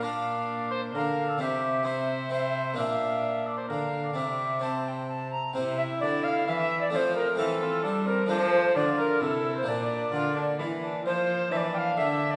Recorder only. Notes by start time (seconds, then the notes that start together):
0.05 F5
0.96 F5
1.40 E5
1.86 E5
2.33 E5
2.80 F5
3.70 F5
4.15 E5
4.62 A5
4.84 G5 A5
5.08 A5
5.31 A#5
5.54 C5
5.77 E5
6.00 D5
6.23 F5
6.46 E5 F5
6.81 D5
6.92 D5
6.96 C5
7.16 A#4
7.37 A4
8.06 A#4
8.29 C5
8.76 D5
8.99 A#4
9.23 A4
9.57 C5
9.68 D5
11.06 C5
11.52 E5
11.57 D5
11.74 G5
11.78 F5
11.98 E5
12.31 D5